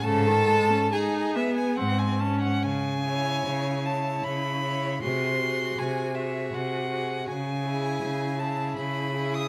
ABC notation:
X:1
M:3/4
L:1/16
Q:1/4=78
K:C#m
V:1 name="Violin"
a4 g2 e g f g a f | g6 a2 b4 | ^b4 g2 e2 f4 | g6 a2 b3 d' |]
V:2 name="Violin"
A4 G4 z4 | z2 c4 c4 c2 | G2 G4 G4 G2 | z2 G4 G4 G2 |]
V:3 name="Viola"
C, D, G, C D2 B,2 ^B,2 C2 | z2 E4 E4 E2 | F2 F4 F4 F2 | z2 E4 E4 E2 |]
V:4 name="Cello" clef=bass
G,,4 z4 G,,4 | C,4 C,4 C,4 | ^B,,4 B,,4 B,,4 | C,4 C,4 C,4 |]